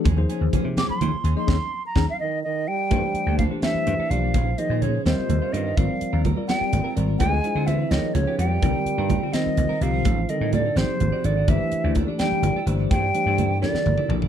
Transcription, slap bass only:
0, 0, Header, 1, 3, 480
1, 0, Start_track
1, 0, Tempo, 476190
1, 54, Time_signature, 6, 3, 24, 8
1, 14397, End_track
2, 0, Start_track
2, 0, Title_t, "Slap bass"
2, 0, Program_c, 0, 36
2, 56, Note_on_c, 0, 39, 98
2, 240, Note_off_c, 0, 39, 0
2, 412, Note_on_c, 0, 39, 94
2, 505, Note_off_c, 0, 39, 0
2, 648, Note_on_c, 0, 48, 77
2, 835, Note_off_c, 0, 48, 0
2, 1023, Note_on_c, 0, 51, 95
2, 1112, Note_off_c, 0, 51, 0
2, 1248, Note_on_c, 0, 39, 91
2, 1342, Note_off_c, 0, 39, 0
2, 1492, Note_on_c, 0, 39, 106
2, 1582, Note_off_c, 0, 39, 0
2, 1971, Note_on_c, 0, 39, 101
2, 2062, Note_off_c, 0, 39, 0
2, 2935, Note_on_c, 0, 43, 88
2, 3027, Note_off_c, 0, 43, 0
2, 3289, Note_on_c, 0, 38, 77
2, 3476, Note_off_c, 0, 38, 0
2, 3902, Note_on_c, 0, 43, 79
2, 3992, Note_off_c, 0, 43, 0
2, 4135, Note_on_c, 0, 35, 77
2, 4320, Note_off_c, 0, 35, 0
2, 4382, Note_on_c, 0, 34, 88
2, 4564, Note_off_c, 0, 34, 0
2, 4732, Note_on_c, 0, 46, 73
2, 5011, Note_off_c, 0, 46, 0
2, 5095, Note_on_c, 0, 39, 101
2, 5188, Note_off_c, 0, 39, 0
2, 5332, Note_on_c, 0, 39, 90
2, 5426, Note_off_c, 0, 39, 0
2, 5576, Note_on_c, 0, 43, 82
2, 5761, Note_off_c, 0, 43, 0
2, 5821, Note_on_c, 0, 32, 90
2, 5912, Note_off_c, 0, 32, 0
2, 6178, Note_on_c, 0, 39, 78
2, 6363, Note_off_c, 0, 39, 0
2, 6779, Note_on_c, 0, 32, 82
2, 6871, Note_off_c, 0, 32, 0
2, 7022, Note_on_c, 0, 32, 74
2, 7205, Note_off_c, 0, 32, 0
2, 7261, Note_on_c, 0, 38, 90
2, 7445, Note_off_c, 0, 38, 0
2, 7612, Note_on_c, 0, 50, 73
2, 7892, Note_off_c, 0, 50, 0
2, 7971, Note_on_c, 0, 37, 101
2, 8067, Note_off_c, 0, 37, 0
2, 8211, Note_on_c, 0, 37, 87
2, 8307, Note_off_c, 0, 37, 0
2, 8450, Note_on_c, 0, 41, 83
2, 8639, Note_off_c, 0, 41, 0
2, 8692, Note_on_c, 0, 36, 105
2, 8787, Note_off_c, 0, 36, 0
2, 9050, Note_on_c, 0, 43, 75
2, 9238, Note_off_c, 0, 43, 0
2, 9650, Note_on_c, 0, 36, 73
2, 9746, Note_off_c, 0, 36, 0
2, 9888, Note_on_c, 0, 36, 77
2, 10077, Note_off_c, 0, 36, 0
2, 10130, Note_on_c, 0, 33, 85
2, 10318, Note_off_c, 0, 33, 0
2, 10490, Note_on_c, 0, 45, 85
2, 10770, Note_off_c, 0, 45, 0
2, 10843, Note_on_c, 0, 32, 98
2, 10942, Note_off_c, 0, 32, 0
2, 11092, Note_on_c, 0, 32, 77
2, 11187, Note_off_c, 0, 32, 0
2, 11331, Note_on_c, 0, 32, 88
2, 11518, Note_off_c, 0, 32, 0
2, 11568, Note_on_c, 0, 31, 90
2, 11664, Note_off_c, 0, 31, 0
2, 11933, Note_on_c, 0, 38, 76
2, 12119, Note_off_c, 0, 38, 0
2, 12522, Note_on_c, 0, 31, 81
2, 12620, Note_off_c, 0, 31, 0
2, 12763, Note_on_c, 0, 31, 82
2, 12953, Note_off_c, 0, 31, 0
2, 13013, Note_on_c, 0, 43, 99
2, 13199, Note_off_c, 0, 43, 0
2, 13365, Note_on_c, 0, 43, 80
2, 13738, Note_off_c, 0, 43, 0
2, 13967, Note_on_c, 0, 31, 78
2, 14063, Note_off_c, 0, 31, 0
2, 14199, Note_on_c, 0, 34, 84
2, 14389, Note_off_c, 0, 34, 0
2, 14397, End_track
3, 0, Start_track
3, 0, Title_t, "Muted slap bass strokes"
3, 900, Note_on_c, 9, 29, 31
3, 1001, Note_off_c, 9, 29, 0
3, 1143, Note_on_c, 9, 29, 35
3, 1244, Note_off_c, 9, 29, 0
3, 3166, Note_on_c, 9, 29, 32
3, 3267, Note_off_c, 9, 29, 0
3, 3773, Note_on_c, 9, 29, 31
3, 3874, Note_off_c, 9, 29, 0
3, 4017, Note_on_c, 9, 29, 31
3, 4118, Note_off_c, 9, 29, 0
3, 6061, Note_on_c, 9, 29, 35
3, 6161, Note_off_c, 9, 29, 0
3, 6661, Note_on_c, 9, 29, 33
3, 6761, Note_off_c, 9, 29, 0
3, 8926, Note_on_c, 9, 29, 33
3, 9027, Note_off_c, 9, 29, 0
3, 9538, Note_on_c, 9, 29, 32
3, 9639, Note_off_c, 9, 29, 0
3, 11814, Note_on_c, 9, 29, 33
3, 11915, Note_off_c, 9, 29, 0
3, 12414, Note_on_c, 9, 29, 30
3, 12514, Note_off_c, 9, 29, 0
3, 13848, Note_on_c, 9, 29, 29
3, 13949, Note_off_c, 9, 29, 0
3, 14397, End_track
0, 0, End_of_file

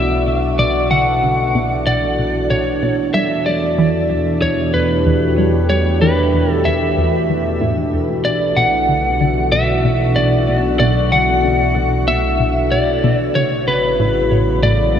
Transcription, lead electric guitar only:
0, 0, Header, 1, 2, 480
1, 0, Start_track
1, 0, Key_signature, 2, "minor"
1, 0, Tempo, 638298
1, 444, Time_signature, 4, 2, 24, 8
1, 11277, End_track
2, 0, Start_track
2, 0, Title_t, "Lead electric guitar"
2, 0, Program_c, 0, 29
2, 0, Note_on_c, 0, 76, 92
2, 298, Note_off_c, 0, 76, 0
2, 444, Note_on_c, 0, 74, 94
2, 680, Note_off_c, 0, 74, 0
2, 683, Note_on_c, 0, 78, 101
2, 1404, Note_on_c, 0, 74, 96
2, 1425, Note_off_c, 0, 78, 0
2, 1880, Note_off_c, 0, 74, 0
2, 1883, Note_on_c, 0, 73, 87
2, 2219, Note_off_c, 0, 73, 0
2, 2362, Note_on_c, 0, 76, 97
2, 2587, Note_off_c, 0, 76, 0
2, 2601, Note_on_c, 0, 74, 90
2, 3293, Note_off_c, 0, 74, 0
2, 3324, Note_on_c, 0, 73, 87
2, 3560, Note_off_c, 0, 73, 0
2, 3563, Note_on_c, 0, 71, 84
2, 4280, Note_off_c, 0, 71, 0
2, 4283, Note_on_c, 0, 73, 88
2, 4520, Note_off_c, 0, 73, 0
2, 4523, Note_on_c, 0, 71, 78
2, 4899, Note_off_c, 0, 71, 0
2, 4899, Note_on_c, 0, 69, 78
2, 5002, Note_on_c, 0, 76, 78
2, 5018, Note_off_c, 0, 69, 0
2, 5933, Note_off_c, 0, 76, 0
2, 6203, Note_on_c, 0, 74, 94
2, 6441, Note_on_c, 0, 78, 101
2, 6451, Note_off_c, 0, 74, 0
2, 7156, Note_off_c, 0, 78, 0
2, 7159, Note_on_c, 0, 76, 97
2, 7639, Note_on_c, 0, 74, 91
2, 7656, Note_off_c, 0, 76, 0
2, 7976, Note_off_c, 0, 74, 0
2, 8119, Note_on_c, 0, 74, 93
2, 8362, Note_on_c, 0, 78, 98
2, 8369, Note_off_c, 0, 74, 0
2, 9053, Note_off_c, 0, 78, 0
2, 9082, Note_on_c, 0, 76, 99
2, 9562, Note_on_c, 0, 74, 90
2, 9578, Note_off_c, 0, 76, 0
2, 9898, Note_off_c, 0, 74, 0
2, 10041, Note_on_c, 0, 73, 92
2, 10282, Note_off_c, 0, 73, 0
2, 10285, Note_on_c, 0, 71, 87
2, 11000, Note_off_c, 0, 71, 0
2, 11003, Note_on_c, 0, 74, 94
2, 11277, Note_off_c, 0, 74, 0
2, 11277, End_track
0, 0, End_of_file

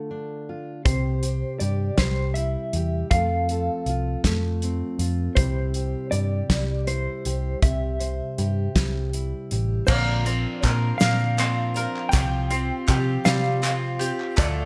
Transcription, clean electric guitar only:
0, 0, Header, 1, 2, 480
1, 0, Start_track
1, 0, Tempo, 750939
1, 548, Time_signature, 6, 3, 24, 8
1, 9366, End_track
2, 0, Start_track
2, 0, Title_t, "Clean electric guitar"
2, 0, Program_c, 0, 27
2, 545, Note_on_c, 0, 72, 62
2, 1017, Note_off_c, 0, 72, 0
2, 1019, Note_on_c, 0, 74, 68
2, 1268, Note_off_c, 0, 74, 0
2, 1271, Note_on_c, 0, 72, 64
2, 1494, Note_off_c, 0, 72, 0
2, 1496, Note_on_c, 0, 76, 74
2, 1983, Note_off_c, 0, 76, 0
2, 1985, Note_on_c, 0, 77, 75
2, 2684, Note_off_c, 0, 77, 0
2, 3422, Note_on_c, 0, 72, 58
2, 3902, Note_off_c, 0, 72, 0
2, 3905, Note_on_c, 0, 74, 78
2, 4392, Note_off_c, 0, 74, 0
2, 4395, Note_on_c, 0, 72, 71
2, 4873, Note_off_c, 0, 72, 0
2, 4876, Note_on_c, 0, 76, 73
2, 5810, Note_off_c, 0, 76, 0
2, 6307, Note_on_c, 0, 74, 74
2, 6818, Note_off_c, 0, 74, 0
2, 6818, Note_on_c, 0, 72, 74
2, 7015, Note_off_c, 0, 72, 0
2, 7017, Note_on_c, 0, 77, 83
2, 7726, Note_off_c, 0, 77, 0
2, 7729, Note_on_c, 0, 79, 80
2, 8195, Note_off_c, 0, 79, 0
2, 8470, Note_on_c, 0, 77, 77
2, 8984, Note_off_c, 0, 77, 0
2, 9197, Note_on_c, 0, 74, 73
2, 9366, Note_off_c, 0, 74, 0
2, 9366, End_track
0, 0, End_of_file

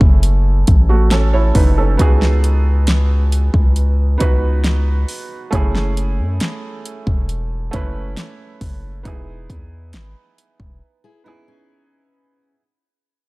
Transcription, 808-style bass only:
0, 0, Header, 1, 2, 480
1, 0, Start_track
1, 0, Tempo, 882353
1, 1085, Time_signature, 4, 2, 24, 8
1, 7225, End_track
2, 0, Start_track
2, 0, Title_t, "808-style bass"
2, 0, Program_c, 0, 38
2, 6, Note_on_c, 0, 30, 99
2, 351, Note_off_c, 0, 30, 0
2, 371, Note_on_c, 0, 33, 104
2, 829, Note_off_c, 0, 33, 0
2, 845, Note_on_c, 0, 30, 113
2, 1076, Note_off_c, 0, 30, 0
2, 1086, Note_on_c, 0, 37, 110
2, 1904, Note_off_c, 0, 37, 0
2, 1926, Note_on_c, 0, 37, 103
2, 2271, Note_off_c, 0, 37, 0
2, 2290, Note_on_c, 0, 37, 102
2, 2749, Note_off_c, 0, 37, 0
2, 3007, Note_on_c, 0, 30, 98
2, 3369, Note_on_c, 0, 42, 93
2, 3377, Note_off_c, 0, 30, 0
2, 3481, Note_off_c, 0, 42, 0
2, 3847, Note_on_c, 0, 28, 101
2, 4192, Note_off_c, 0, 28, 0
2, 4211, Note_on_c, 0, 30, 103
2, 4439, Note_off_c, 0, 30, 0
2, 4687, Note_on_c, 0, 30, 111
2, 4916, Note_off_c, 0, 30, 0
2, 4926, Note_on_c, 0, 28, 112
2, 5156, Note_off_c, 0, 28, 0
2, 5167, Note_on_c, 0, 40, 102
2, 5409, Note_on_c, 0, 32, 107
2, 5417, Note_off_c, 0, 40, 0
2, 5521, Note_off_c, 0, 32, 0
2, 5766, Note_on_c, 0, 28, 102
2, 5881, Note_off_c, 0, 28, 0
2, 7225, End_track
0, 0, End_of_file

